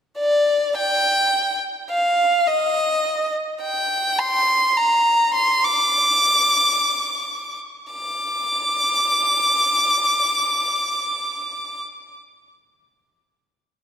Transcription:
0.19 0.72 D5 medium
0.77 1.58 G5 medium
1.90 2.49 F5 medium
2.47 3.33 D#5 medium
3.62 4.20 G5 medium
4.19 4.78 C6 medium
4.77 5.34 A#5 medium
5.34 5.66 C6 medium
5.65 7.56 D6 medium
7.91 11.81 D6 medium

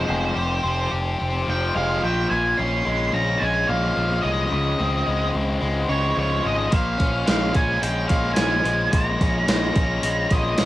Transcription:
0.00 0.38 F3 medium
0.00 0.38 G#3 medium
0.00 0.35 G#4 medium
0.00 0.91 C5 medium
0.08 0.32 F1 medium
0.08 1.47 F2 medium
0.35 0.59 F1 medium
0.35 0.90 G4 medium
0.64 0.87 F1 medium
0.64 1.18 C4 medium
0.91 1.15 F1 medium
0.91 2.03 G4 medium
1.19 1.43 F1 medium
1.19 2.03 C4 medium
1.46 1.70 F1 medium
1.46 3.95 F3 medium
1.46 1.75 G5 medium
1.74 1.98 F1 medium
1.74 2.05 G#3 medium
1.74 2.04 F5 medium
2.02 2.26 A#1 medium
2.02 2.29 A#2 medium
2.02 2.29 G5 medium
2.30 2.54 A#1 medium
2.30 3.67 A#2 medium
2.30 2.59 G#5 medium
2.57 2.81 A#1 medium
2.57 3.13 C#4 medium
2.57 3.13 C6 loud
2.85 3.09 A#1 medium
2.85 3.41 G#3 medium
3.13 3.36 A#1 medium
3.13 4.79 C#4 medium
3.13 3.42 A#5 medium
3.38 3.64 A#1 medium
3.38 4.23 G#3 medium
3.38 3.68 G#5 medium
3.68 3.91 A#1 medium
3.68 4.50 A#2 medium
3.68 4.26 F5 medium
3.96 4.19 A#1 medium
3.96 6.15 F3 medium
4.22 4.47 C2 medium
4.22 5.06 G#3 medium
4.22 5.30 D#5 medium
4.50 4.74 C#2 medium
4.50 5.87 C#3 medium
4.79 5.02 C#2 medium
4.79 5.32 C4 medium
5.06 5.30 C#2 medium
5.06 5.60 G#3 medium
5.33 5.57 C#2 medium
5.33 6.72 C4 medium
5.60 5.84 C#2 medium
5.60 6.43 G#3 medium
5.88 6.12 C#2 medium
5.88 6.69 C#3 medium
5.88 6.18 C#5 medium
6.15 6.40 C#2 medium
6.15 8.36 F3 medium
6.15 6.44 C#5 medium
6.43 6.67 G#1 medium
6.43 6.73 G#3 medium
6.43 6.75 D#5 medium
6.70 6.95 A#1 medium
6.70 8.07 A#2 medium
6.70 7.26 F5 medium
6.70 kick medium
6.70 open hi-hat medium
6.97 7.22 A#1 medium
6.97 7.52 C#4 medium
6.97 kick medium
6.97 open hi-hat soft
7.26 7.51 A#1 medium
7.26 7.81 G#3 medium
7.26 7.55 F5 medium
7.26 snare loud
7.26 open hi-hat medium
7.53 7.78 A#1 medium
7.53 8.92 C#4 medium
7.53 7.81 G#5 medium
7.53 kick medium
7.53 open hi-hat soft
7.82 8.05 A#1 medium
7.82 8.64 G#3 medium
7.82 8.08 G5 medium
7.82 open hi-hat medium
8.08 8.33 A#1 medium
8.08 8.90 A#2 medium
8.08 8.33 F5 medium
8.08 kick medium
8.08 open hi-hat soft
8.34 9.75 F3 medium
8.34 8.93 G#5 medium
8.34 snare loud
8.34 open hi-hat medium
8.38 8.60 A#1 medium
8.64 8.87 A#1 medium
8.64 9.47 G#3 medium
8.64 open hi-hat soft
8.90 10.30 A#2 medium
8.90 9.48 A#5 medium
8.90 kick loud
8.90 open hi-hat medium
8.94 9.16 A#1 medium
9.20 9.43 A#1 medium
9.20 9.75 C#4 medium
9.20 kick medium
9.20 open hi-hat soft
9.48 9.70 A#1 medium
9.48 10.04 G#3 medium
9.48 10.34 A#5 medium
9.48 snare loud
9.48 open hi-hat medium
9.76 9.98 A#1 medium
9.76 10.65 C#4 medium
9.76 kick medium
9.76 open hi-hat medium
10.03 10.25 A#1 medium
10.03 10.65 G#3 medium
10.03 open hi-hat medium
10.31 10.53 A#1 medium
10.31 10.65 A#2 medium
10.31 10.65 D#5 medium
10.31 kick medium
10.31 open hi-hat soft
10.58 10.65 A#1 medium
10.58 10.65 F3 medium
10.58 snare loud
10.58 open hi-hat medium

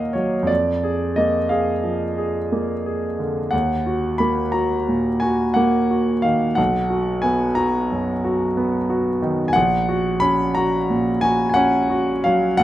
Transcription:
0.00 0.45 D#2 soft
0.00 0.52 A#2 soft
0.00 0.52 A#3 soft
0.00 0.52 A#4 soft
0.00 0.14 D#5 medium
0.00 0.52 F5 medium
0.00 0.52 F#5 medium
0.00 0.51 G#5 medium
0.13 0.49 F#3 soft
0.13 0.48 C#5 medium
0.43 3.45 F2 soft
0.47 1.16 D5 medium
0.83 1.37 G#4 soft
1.16 1.70 A#3 soft
1.16 1.50 D#5 medium
1.49 2.04 G#4 soft
1.49 3.19 F5 medium
1.84 2.38 F3 soft
2.18 2.72 G#4 soft
2.52 3.07 A#3 soft
2.86 3.40 G#4 soft
3.19 3.52 D3 soft
3.51 6.54 D#2 soft
3.51 4.19 F#5 medium
3.86 4.40 F#4 soft
4.18 4.74 A#3 soft
4.18 4.53 B5 medium
4.52 5.09 F#4 soft
4.52 5.22 A#5 medium
4.88 5.43 A#2 soft
5.20 5.77 F#4 soft
5.20 5.56 G#5 medium
5.54 6.11 A#3 soft
5.54 6.23 F#5 medium
5.91 6.45 F#4 soft
6.22 6.58 D#3 soft
6.22 6.57 F5 medium
6.55 9.50 B1 medium
6.55 7.24 F#5 medium
6.90 7.44 F#4 soft
7.22 7.78 B3 soft
7.22 7.57 G#5 medium
7.55 8.11 F#4 soft
7.55 9.20 A#5 medium
7.92 8.44 F#2 soft
8.24 8.76 F#4 soft
8.57 9.09 B3 soft
8.90 9.41 F#4 soft
9.22 9.55 D#3 soft
9.48 9.55 G#5 medium
9.53 12.55 A#1 medium
9.53 10.20 F#5 loud
9.89 10.42 F#4 soft
10.20 10.76 C#4 soft
10.20 10.55 B5 medium
10.55 11.09 F#4 soft
10.55 11.21 A#5 medium
10.90 11.42 A#2 soft
11.21 11.76 F#4 soft
11.21 11.48 G#5 medium
11.49 11.56 G#5 medium
11.54 12.11 C#4 medium
11.54 12.24 F#5 medium
11.90 12.45 F#4 medium
12.24 12.59 F#3 soft
12.24 12.58 F5 medium
12.57 12.63 D#2 medium
12.57 12.63 F#5 loud

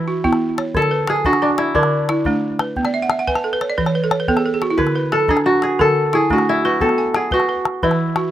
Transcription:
0.00 1.30 E4 medium
0.00 0.41 G#4 medium
0.00 0.24 B4 medium
0.08 0.58 F#4 medium
0.24 0.57 B3 medium
0.24 0.74 E4 medium
0.24 calabash thump medium
0.33 calabash click medium
0.58 0.91 C#5 medium
0.58 calabash click medium
0.74 1.08 D3 medium
0.74 1.16 A4 loud
0.74 calabash thump medium
0.82 calabash click medium
0.91 1.42 B4 medium
1.07 2.46 G#4 medium
1.07 1.59 A4 medium
1.07 calabash click medium
1.16 calabash click soft
1.25 1.41 D4 medium
1.25 2.72 F#4 medium
1.25 calabash thump medium
1.33 calabash click soft
1.42 1.48 D4 medium
1.42 1.92 D4 medium
1.50 calabash click soft
1.58 3.15 E4 medium
1.58 calabash click medium
1.75 2.09 D3 medium
1.75 3.43 D4 medium
1.75 calabash thump medium
1.83 calabash click soft
2.09 2.60 E4 medium
2.09 calabash click medium
2.25 2.60 A3 medium
2.25 2.76 D4 medium
2.25 calabash thump medium
2.59 2.93 B4 medium
2.59 calabash click medium
2.76 3.10 B3 medium
2.76 calabash thump medium
2.85 3.01 D5 medium
2.85 calabash click soft
2.94 3.09 E5 medium
3.02 3.18 F#5 medium
3.10 3.26 E5 medium
3.10 calabash click medium
3.19 3.34 F#5 medium
3.19 calabash click soft
3.27 3.52 B4 medium
3.27 3.43 G#5 medium
3.27 calabash thump medium
3.35 3.51 A5 medium
3.35 calabash click soft
3.44 3.60 A4 medium
3.53 3.68 B4 medium
3.53 calabash click soft
3.61 3.77 C#5 medium
3.61 calabash click medium
3.70 3.85 D5 medium
3.78 4.11 E3 medium
3.78 3.93 B4 medium
3.78 calabash thump medium
3.86 4.02 C#5 medium
3.86 calabash click soft
3.95 4.10 B4 medium
4.04 4.19 A4 medium
4.11 4.27 C#5 medium
4.11 calabash click medium
4.20 4.35 B4 medium
4.28 4.62 B3 medium
4.28 4.44 A4 medium
4.28 calabash thump medium
4.37 4.52 G#4 medium
4.37 calabash click medium
4.46 4.61 A4 medium
4.54 4.69 G#4 medium
4.62 4.78 F#4 medium
4.62 calabash click medium
4.70 4.86 E4 medium
4.78 5.12 D3 medium
4.78 6.00 B4 medium
4.78 calabash thump medium
4.87 calabash click soft
4.96 5.46 B4 medium
5.12 5.63 A4 medium
5.12 5.36 A4 medium
5.12 calabash click medium
5.20 calabash click soft
5.28 5.45 D4 medium
5.28 5.36 G#4 medium
5.28 calabash thump medium
5.37 calabash click soft
5.46 5.97 D4 medium
5.46 6.32 F#4 medium
5.53 calabash click soft
5.62 5.87 G#4 medium
5.62 calabash click medium
5.79 6.13 D3 medium
5.79 6.30 A4 medium
5.79 6.21 A4 loud
5.79 calabash thump medium
6.13 6.64 E4 medium
6.13 6.87 G#4 medium
6.13 calabash click medium
6.30 6.64 A3 medium
6.30 6.81 D4 medium
6.30 6.64 F#4 medium
6.30 calabash thump medium
6.38 calabash click soft
6.49 7.83 E4 medium
6.65 7.33 F#4 medium
6.65 6.98 B4 medium
6.81 7.15 B3 medium
6.81 7.22 A4 medium
6.81 calabash thump medium
6.89 calabash click soft
6.98 7.49 G#5 medium
7.15 8.31 G#4 medium
7.15 7.66 F#5 medium
7.15 calabash click medium
7.31 8.31 F#4 medium
7.31 7.48 B4 medium
7.31 calabash thump medium
7.31 calabash click soft
7.40 calabash click soft
7.48 7.82 B4 medium
7.48 calabash click soft
7.65 calabash click medium
7.83 8.17 E3 medium
7.83 8.31 E4 medium
7.83 8.31 B4 medium
7.83 calabash thump medium
7.91 calabash click soft
8.16 8.31 F#4 medium
8.16 calabash click medium

